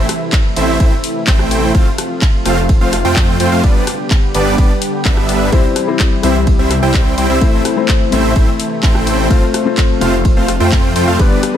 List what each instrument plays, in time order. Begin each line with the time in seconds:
Already playing: analog synth pad C3 E3 A3 E4
0.09 cross-stick, open hi-hat
0.33 kick, clap, ride
0.56 detuned saw bass A1, supersaw synth A3 C4 E4 C5 E5, open hi-hat
0.80 detuned saw bass A1, supersaw synth A3 C4 E4 C5 E5, kick, ride
1.04 open hi-hat
1.27 detuned saw bass A1, supersaw synth A3 C4 E4 C5 G5, kick, clap, ride
1.39 cross-stick
1.51 open hi-hat
1.74 detuned saw bass F1, analog synth pad F3 F4, supersaw synth A3 C4 F4 F5, kick, ride
1.98 cross-stick, open hi-hat
2.22 kick, clap, ride
2.46 detuned saw bass F1, supersaw synth A3 C4 F4 C5 F5, cross-stick, open hi-hat
2.69 kick, ride
2.81 detuned saw bass F1, supersaw synth A3 C4 F4 C5 F5
2.93 cross-stick, open hi-hat
3.05 detuned saw bass F2, supersaw synth A3 C4 F4 C5 G5
3.16 kick, clap, ride
3.40 detuned saw bass F2, supersaw synth A3 C4 F4 C5 G5, open hi-hat
3.52 detuned saw bass F2, supersaw synth A3 C4 F4 C5 F5
3.63 detuned saw bass G1, analog synth pad D3 G3 B3 G4, supersaw synth G3 B3 D4 B4 D5, kick, ride
3.87 cross-stick, open hi-hat
4.11 kick, clap, ride
4.35 detuned saw bass G1, supersaw synth G3 B3 D4 B4 D5, open hi-hat
4.58 detuned saw bass G1, supersaw synth G3 B3 B4, kick, ride
4.82 open hi-hat
5.05 detuned saw bass G1, supersaw synth G3 B3 D4 B4 E5, kick, clap, ride
5.17 cross-stick
5.29 open hi-hat
5.52 detuned saw bass C2, analog synth pad C3 E3 G3 E4, felt piano G3 C4 E4 C5, supersaw synth G3 C4 E4 C5, kick, ride
5.76 cross-stick, open hi-hat
5.87 felt piano G3 C4 E4 C5
5.99 kick, clap, ride
6.22 detuned saw bass C2, felt piano G3 C4 E4 C5, supersaw synth G3 C4 E4 C5 E5, cross-stick, open hi-hat
6.47 kick, ride
6.59 detuned saw bass C2, supersaw synth G3 C4 E4 C5 E5
6.71 cross-stick, open hi-hat
6.83 detuned saw bass C2, supersaw synth G3 C4 E4 C5 G5
6.94 kick, clap, ride
7.18 detuned saw bass C2, supersaw synth G3 C4 E4 C5 G5, open hi-hat
7.30 detuned saw bass C2, supersaw synth G3 C4 E4 C5 E5
7.41 detuned saw bass A1, analog synth pad E3 A3, felt piano A3 C4 E4 C5, supersaw synth A3 C4 E4 E5, kick, ride
7.65 cross-stick, open hi-hat
7.76 felt piano A3 C4 E4 C5
7.88 kick, clap, ride
8.11 detuned saw bass A1, felt piano A3 C4 E4 C5, supersaw synth A3 C4 E4 C5 E5, open hi-hat
8.36 detuned saw bass A1, supersaw synth A3 C4 E4 C5 E5, kick, ride
8.60 open hi-hat
8.83 detuned saw bass A1, supersaw synth A3 C4 E4 C5 G5, kick, clap, ride
8.95 cross-stick
9.07 open hi-hat
9.30 detuned saw bass F1, analog synth pad F3 F4, felt piano A3 C4 F4 C5, supersaw synth A3 C4 F4 C5 F5, kick, ride
9.54 cross-stick, open hi-hat
9.65 felt piano A3 C4 F4 C5
9.77 kick, clap, ride
10.00 detuned saw bass F1, felt piano A3 C4 F4 C5, supersaw synth A3 C4 F4 C5 F5, cross-stick, open hi-hat
10.25 kick, ride
10.37 detuned saw bass F1, supersaw synth A3 C4 F4 C5 F5
10.48 cross-stick, open hi-hat
10.60 detuned saw bass F2, supersaw synth A3 C4 F4 C5 G5
10.72 kick, clap, ride
10.96 detuned saw bass F2, supersaw synth A3 C4 F4 C5 G5, open hi-hat
11.08 detuned saw bass F2, supersaw synth A3 C4 F4 C5 F5
11.19 detuned saw bass G1, analog synth pad D3 G3 B3 G4, felt piano G3 B3 D4 B4, supersaw synth G3 B3 D4 B4 D5, kick, ride
11.43 cross-stick, open hi-hat